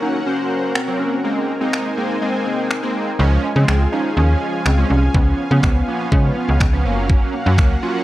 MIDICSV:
0, 0, Header, 1, 6, 480
1, 0, Start_track
1, 0, Key_signature, -5, "major"
1, 0, Tempo, 487805
1, 1222, Time_signature, 4, 2, 24, 8
1, 7908, End_track
2, 0, Start_track
2, 0, Title_t, "Supersaw synth"
2, 0, Program_c, 0, 81
2, 0, Note_on_c, 0, 61, 74
2, 0, Note_on_c, 0, 66, 71
2, 0, Note_on_c, 0, 70, 69
2, 0, Note_on_c, 0, 78, 88
2, 1182, Note_off_c, 0, 61, 0
2, 1200, Note_off_c, 0, 66, 0
2, 1200, Note_off_c, 0, 78, 0
2, 1221, Note_on_c, 0, 63, 78
2, 1221, Note_on_c, 0, 72, 71
2, 1221, Note_on_c, 0, 80, 84
2, 3102, Note_off_c, 0, 70, 0
2, 3122, Note_off_c, 0, 63, 0
2, 3122, Note_off_c, 0, 72, 0
2, 3122, Note_off_c, 0, 80, 0
2, 3141, Note_on_c, 0, 65, 76
2, 3141, Note_on_c, 0, 77, 73
2, 3142, Note_on_c, 0, 68, 74
2, 3142, Note_on_c, 0, 80, 86
2, 5042, Note_off_c, 0, 65, 0
2, 5043, Note_off_c, 0, 68, 0
2, 5063, Note_on_c, 0, 59, 78
2, 5063, Note_on_c, 0, 65, 74
2, 6706, Note_off_c, 0, 80, 0
2, 6725, Note_off_c, 0, 59, 0
2, 6726, Note_off_c, 0, 65, 0
2, 6742, Note_on_c, 0, 58, 78
2, 6742, Note_on_c, 0, 66, 75
2, 6742, Note_on_c, 0, 78, 85
2, 7908, Note_off_c, 0, 58, 0
2, 7908, Note_off_c, 0, 66, 0
2, 7908, Note_off_c, 0, 77, 0
2, 7908, Note_off_c, 0, 78, 0
2, 7908, End_track
3, 0, Start_track
3, 0, Title_t, "Soft synth lead"
3, 0, Program_c, 1, 80
3, 20, Note_on_c, 1, 63, 103
3, 260, Note_on_c, 1, 61, 106
3, 274, Note_off_c, 1, 63, 0
3, 740, Note_on_c, 1, 60, 100
3, 754, Note_off_c, 1, 61, 0
3, 979, Note_on_c, 1, 61, 110
3, 994, Note_off_c, 1, 60, 0
3, 1574, Note_off_c, 1, 61, 0
3, 1580, Note_on_c, 1, 60, 99
3, 1916, Note_off_c, 1, 60, 0
3, 1939, Note_on_c, 1, 58, 90
3, 2180, Note_on_c, 1, 56, 87
3, 2195, Note_off_c, 1, 58, 0
3, 2416, Note_off_c, 1, 56, 0
3, 2422, Note_on_c, 1, 60, 86
3, 2868, Note_off_c, 1, 60, 0
3, 3382, Note_on_c, 1, 56, 99
3, 3828, Note_off_c, 1, 56, 0
3, 3860, Note_on_c, 1, 63, 110
3, 4102, Note_on_c, 1, 61, 105
3, 4116, Note_off_c, 1, 63, 0
3, 4583, Note_on_c, 1, 60, 101
3, 4598, Note_off_c, 1, 61, 0
3, 4816, Note_off_c, 1, 60, 0
3, 4822, Note_on_c, 1, 61, 108
3, 5382, Note_off_c, 1, 61, 0
3, 5423, Note_on_c, 1, 59, 97
3, 5783, Note_on_c, 1, 58, 90
3, 5798, Note_off_c, 1, 59, 0
3, 6024, Note_on_c, 1, 56, 92
3, 6039, Note_off_c, 1, 58, 0
3, 6264, Note_on_c, 1, 59, 88
3, 6279, Note_off_c, 1, 56, 0
3, 6743, Note_off_c, 1, 59, 0
3, 7221, Note_on_c, 1, 58, 97
3, 7668, Note_off_c, 1, 58, 0
3, 7702, Note_on_c, 1, 65, 107
3, 7908, Note_off_c, 1, 65, 0
3, 7908, End_track
4, 0, Start_track
4, 0, Title_t, "Analog polysynth"
4, 0, Program_c, 2, 90
4, 19, Note_on_c, 2, 54, 70
4, 22, Note_on_c, 2, 58, 68
4, 24, Note_on_c, 2, 61, 84
4, 203, Note_off_c, 2, 54, 0
4, 204, Note_off_c, 2, 58, 0
4, 206, Note_off_c, 2, 61, 0
4, 258, Note_on_c, 2, 54, 69
4, 261, Note_on_c, 2, 58, 63
4, 263, Note_on_c, 2, 72, 79
4, 716, Note_off_c, 2, 54, 0
4, 718, Note_off_c, 2, 58, 0
4, 719, Note_off_c, 2, 72, 0
4, 859, Note_on_c, 2, 54, 76
4, 862, Note_on_c, 2, 58, 67
4, 864, Note_on_c, 2, 60, 84
4, 1134, Note_off_c, 2, 54, 0
4, 1136, Note_off_c, 2, 58, 0
4, 1137, Note_off_c, 2, 60, 0
4, 1219, Note_on_c, 2, 56, 75
4, 1222, Note_on_c, 2, 58, 66
4, 1224, Note_on_c, 2, 60, 81
4, 1494, Note_off_c, 2, 56, 0
4, 1496, Note_off_c, 2, 58, 0
4, 1497, Note_off_c, 2, 60, 0
4, 1579, Note_on_c, 2, 56, 72
4, 1581, Note_on_c, 2, 58, 69
4, 1584, Note_on_c, 2, 63, 83
4, 1854, Note_off_c, 2, 56, 0
4, 1855, Note_off_c, 2, 58, 0
4, 1857, Note_off_c, 2, 63, 0
4, 1940, Note_on_c, 2, 56, 73
4, 1942, Note_on_c, 2, 58, 69
4, 1945, Note_on_c, 2, 60, 79
4, 2123, Note_off_c, 2, 56, 0
4, 2125, Note_off_c, 2, 58, 0
4, 2126, Note_off_c, 2, 60, 0
4, 2180, Note_on_c, 2, 56, 70
4, 2183, Note_on_c, 2, 58, 64
4, 2185, Note_on_c, 2, 60, 82
4, 2637, Note_off_c, 2, 56, 0
4, 2639, Note_off_c, 2, 58, 0
4, 2640, Note_off_c, 2, 60, 0
4, 2778, Note_on_c, 2, 56, 73
4, 2781, Note_on_c, 2, 58, 68
4, 2783, Note_on_c, 2, 60, 79
4, 3054, Note_off_c, 2, 56, 0
4, 3055, Note_off_c, 2, 58, 0
4, 3056, Note_off_c, 2, 60, 0
4, 3138, Note_on_c, 2, 53, 89
4, 3141, Note_on_c, 2, 56, 78
4, 3143, Note_on_c, 2, 61, 99
4, 3414, Note_off_c, 2, 53, 0
4, 3415, Note_off_c, 2, 56, 0
4, 3416, Note_off_c, 2, 61, 0
4, 3500, Note_on_c, 2, 53, 76
4, 3502, Note_on_c, 2, 56, 71
4, 3505, Note_on_c, 2, 60, 84
4, 3775, Note_off_c, 2, 53, 0
4, 3776, Note_off_c, 2, 56, 0
4, 3777, Note_off_c, 2, 60, 0
4, 3859, Note_on_c, 2, 53, 75
4, 3861, Note_on_c, 2, 56, 70
4, 3863, Note_on_c, 2, 61, 84
4, 4043, Note_off_c, 2, 53, 0
4, 4044, Note_off_c, 2, 56, 0
4, 4045, Note_off_c, 2, 61, 0
4, 4098, Note_on_c, 2, 53, 74
4, 4101, Note_on_c, 2, 56, 67
4, 4103, Note_on_c, 2, 61, 80
4, 4557, Note_off_c, 2, 53, 0
4, 4558, Note_off_c, 2, 56, 0
4, 4559, Note_off_c, 2, 61, 0
4, 4699, Note_on_c, 2, 53, 77
4, 4702, Note_on_c, 2, 56, 70
4, 4704, Note_on_c, 2, 61, 85
4, 4974, Note_off_c, 2, 53, 0
4, 4975, Note_off_c, 2, 56, 0
4, 4977, Note_off_c, 2, 61, 0
4, 5060, Note_on_c, 2, 53, 73
4, 5063, Note_on_c, 2, 59, 66
4, 5065, Note_on_c, 2, 61, 81
4, 5335, Note_off_c, 2, 53, 0
4, 5336, Note_off_c, 2, 59, 0
4, 5337, Note_off_c, 2, 61, 0
4, 5419, Note_on_c, 2, 53, 77
4, 5421, Note_on_c, 2, 59, 68
4, 5424, Note_on_c, 2, 61, 85
4, 5694, Note_off_c, 2, 53, 0
4, 5695, Note_off_c, 2, 59, 0
4, 5697, Note_off_c, 2, 61, 0
4, 5780, Note_on_c, 2, 53, 76
4, 5783, Note_on_c, 2, 59, 69
4, 5785, Note_on_c, 2, 61, 81
4, 5964, Note_off_c, 2, 53, 0
4, 5965, Note_off_c, 2, 59, 0
4, 5966, Note_off_c, 2, 61, 0
4, 6020, Note_on_c, 2, 53, 70
4, 6022, Note_on_c, 2, 59, 67
4, 6024, Note_on_c, 2, 61, 78
4, 6477, Note_off_c, 2, 53, 0
4, 6478, Note_off_c, 2, 59, 0
4, 6479, Note_off_c, 2, 61, 0
4, 6619, Note_on_c, 2, 53, 72
4, 6621, Note_on_c, 2, 59, 69
4, 6624, Note_on_c, 2, 61, 83
4, 6733, Note_off_c, 2, 61, 0
4, 6740, Note_off_c, 2, 53, 0
4, 6740, Note_on_c, 2, 54, 82
4, 6742, Note_off_c, 2, 59, 0
4, 6743, Note_on_c, 2, 58, 75
4, 6745, Note_on_c, 2, 61, 90
4, 7221, Note_off_c, 2, 54, 0
4, 7222, Note_off_c, 2, 58, 0
4, 7223, Note_off_c, 2, 61, 0
4, 7339, Note_on_c, 2, 54, 75
4, 7341, Note_on_c, 2, 58, 68
4, 7344, Note_on_c, 2, 61, 88
4, 7614, Note_off_c, 2, 54, 0
4, 7615, Note_off_c, 2, 58, 0
4, 7617, Note_off_c, 2, 61, 0
4, 7700, Note_on_c, 2, 54, 78
4, 7702, Note_on_c, 2, 58, 70
4, 7705, Note_on_c, 2, 61, 85
4, 7883, Note_off_c, 2, 54, 0
4, 7884, Note_off_c, 2, 58, 0
4, 7886, Note_off_c, 2, 61, 0
4, 7908, End_track
5, 0, Start_track
5, 0, Title_t, "FM bass"
5, 0, Program_c, 3, 39
5, 3141, Note_on_c, 3, 37, 108
5, 3324, Note_off_c, 3, 37, 0
5, 3501, Note_on_c, 3, 49, 92
5, 3593, Note_off_c, 3, 49, 0
5, 3621, Note_on_c, 3, 37, 86
5, 3804, Note_off_c, 3, 37, 0
5, 4101, Note_on_c, 3, 39, 102
5, 4285, Note_off_c, 3, 39, 0
5, 4582, Note_on_c, 3, 37, 85
5, 4765, Note_off_c, 3, 37, 0
5, 4823, Note_on_c, 3, 36, 88
5, 5005, Note_off_c, 3, 36, 0
5, 5062, Note_on_c, 3, 37, 108
5, 5245, Note_off_c, 3, 37, 0
5, 5421, Note_on_c, 3, 49, 99
5, 5513, Note_off_c, 3, 49, 0
5, 5540, Note_on_c, 3, 37, 89
5, 5724, Note_off_c, 3, 37, 0
5, 6021, Note_on_c, 3, 49, 110
5, 6204, Note_off_c, 3, 49, 0
5, 6382, Note_on_c, 3, 37, 89
5, 6473, Note_off_c, 3, 37, 0
5, 6498, Note_on_c, 3, 37, 90
5, 6743, Note_on_c, 3, 30, 102
5, 6758, Note_off_c, 3, 37, 0
5, 7108, Note_off_c, 3, 30, 0
5, 7342, Note_on_c, 3, 42, 104
5, 7460, Note_on_c, 3, 37, 91
5, 7475, Note_off_c, 3, 42, 0
5, 7644, Note_off_c, 3, 37, 0
5, 7908, End_track
6, 0, Start_track
6, 0, Title_t, "Drums"
6, 742, Note_on_c, 9, 26, 113
6, 840, Note_off_c, 9, 26, 0
6, 1705, Note_on_c, 9, 26, 104
6, 1803, Note_off_c, 9, 26, 0
6, 2662, Note_on_c, 9, 26, 109
6, 2761, Note_off_c, 9, 26, 0
6, 3624, Note_on_c, 9, 26, 107
6, 3723, Note_off_c, 9, 26, 0
6, 4582, Note_on_c, 9, 26, 111
6, 4681, Note_off_c, 9, 26, 0
6, 5062, Note_on_c, 9, 36, 115
6, 5160, Note_off_c, 9, 36, 0
6, 5540, Note_on_c, 9, 36, 107
6, 5544, Note_on_c, 9, 26, 111
6, 5639, Note_off_c, 9, 36, 0
6, 5643, Note_off_c, 9, 26, 0
6, 6021, Note_on_c, 9, 36, 111
6, 6120, Note_off_c, 9, 36, 0
6, 6499, Note_on_c, 9, 36, 106
6, 6502, Note_on_c, 9, 26, 107
6, 6597, Note_off_c, 9, 36, 0
6, 6601, Note_off_c, 9, 26, 0
6, 6982, Note_on_c, 9, 36, 121
6, 7080, Note_off_c, 9, 36, 0
6, 7460, Note_on_c, 9, 36, 111
6, 7464, Note_on_c, 9, 26, 108
6, 7559, Note_off_c, 9, 36, 0
6, 7563, Note_off_c, 9, 26, 0
6, 7908, End_track
0, 0, End_of_file